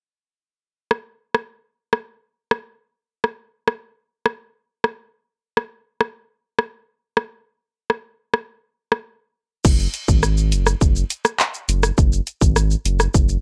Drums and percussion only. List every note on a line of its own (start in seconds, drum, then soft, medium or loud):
0.91 cross-stick medium
1.34 cross-stick medium
1.93 cross-stick medium
2.51 cross-stick medium
3.24 cross-stick medium
3.68 cross-stick medium
4.26 cross-stick medium
4.84 cross-stick medium
5.57 cross-stick medium
6.01 cross-stick medium
6.59 cross-stick medium
7.17 cross-stick medium
7.90 cross-stick medium
8.34 cross-stick medium
8.92 cross-stick medium
9.65 kick loud
9.65 crash loud
9.65 shaker medium
9.79 shaker medium
9.94 closed hi-hat medium
9.94 shaker soft
10.08 kick medium
10.08 shaker medium
10.23 cross-stick medium
10.23 shaker medium
10.37 shaker soft
10.52 closed hi-hat medium
10.52 shaker medium
10.66 cross-stick medium
10.66 shaker medium
10.81 kick medium
10.81 shaker medium
10.96 shaker medium
11.10 closed hi-hat medium
11.10 shaker medium
11.25 cross-stick loud
11.25 shaker medium
11.39 clap loud
11.39 shaker medium
11.54 shaker medium
11.69 closed hi-hat medium
11.69 shaker medium
11.83 cross-stick loud
11.83 shaker medium
11.98 kick loud
11.98 shaker medium
12.13 shaker medium
12.27 closed hi-hat medium
12.27 shaker soft
12.41 kick medium
12.41 shaker medium
12.56 cross-stick medium
12.56 shaker medium
12.71 shaker medium
12.85 closed hi-hat medium
12.85 shaker medium
13.00 cross-stick medium
13.00 shaker medium
13.14 kick medium
13.14 shaker medium
13.29 shaker medium